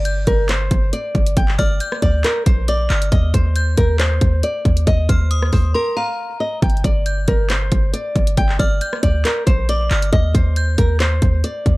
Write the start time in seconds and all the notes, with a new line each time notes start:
Already playing: G1 D5
0.05 G6, closed hi-hat
0.27 G1 A#4, kick, closed hi-hat
0.49 C5, clap, closed hi-hat
0.71 G1, kick, closed hi-hat
0.93 D5, closed hi-hat
1.15 G1, kick, closed hi-hat
1.26 closed hi-hat
1.37 G1 G5, kick, closed hi-hat
1.48 clap
1.58 G1 D5 F6, kick, closed hi-hat
1.80 G6, closed hi-hat
1.92 cross-stick
2.02 D2 D5, kick, closed hi-hat
2.24 A#4, clap, closed hi-hat
2.46 A#1 C5, kick, closed hi-hat
2.68 D5 D6, closed hi-hat
2.90 G1 F6, clap, closed hi-hat
3.02 closed hi-hat
3.12 D#2 D#5, kick, closed hi-hat
3.34 D#2 C5, kick, closed hi-hat
3.56 G6, closed hi-hat
3.77 D#2 A#4, kick, closed hi-hat
3.99 C5, clap, closed hi-hat
4.21 D#2, kick, closed hi-hat
4.43 D5, closed hi-hat
4.65 D#2, kick, closed hi-hat
4.77 closed hi-hat
4.87 D#2 D#5, kick, closed hi-hat
5.09 D#2 C5 F6, kick, closed hi-hat
5.31 D#6, closed hi-hat
5.43 cross-stick
5.53 D#2 C5, kick, open hi-hat
5.74 A#4 C6
5.97 F5 A#5
6.40 D#5
6.62 G1 G5, kick, closed hi-hat
6.70 closed hi-hat
6.77 closed hi-hat
6.84 G1 D5, kick, closed hi-hat
7.06 G6, closed hi-hat
7.28 G1 A#4, kick, closed hi-hat
7.50 C5, clap, closed hi-hat
7.72 G1, kick, closed hi-hat
7.93 D5, closed hi-hat
8.16 G1, kick, closed hi-hat
8.27 closed hi-hat
8.37 G1 G5, kick, closed hi-hat
8.49 clap
8.59 G1 D5 F6, kick, closed hi-hat
8.81 G6, closed hi-hat
8.93 cross-stick
9.03 D2 D5, kick, closed hi-hat
9.25 A#4, clap, closed hi-hat
9.46 A#1 C5, kick, closed hi-hat
9.69 D5 D6, closed hi-hat
9.91 G1 F6, clap, closed hi-hat
10.02 closed hi-hat
10.12 D#2 D#5, kick, closed hi-hat
10.34 D#2 C5, kick, closed hi-hat
10.56 G6, closed hi-hat
10.78 D#2 A#4, kick, closed hi-hat
11.00 C5, clap, closed hi-hat
11.22 D#2, kick, closed hi-hat
11.44 D5, closed hi-hat
11.66 D#2, kick, closed hi-hat